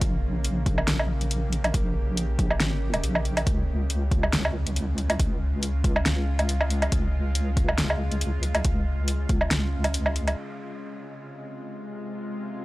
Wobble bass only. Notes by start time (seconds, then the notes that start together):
0.01 A#1
0.88 A#1
1.74 A#1
2.60 G#1
3.03 A#1
3.47 C#2
4.33 C#2
5.20 C#2
6.06 C#2
6.92 C#2
7.78 C#2
8.65 C#2
9.51 C#2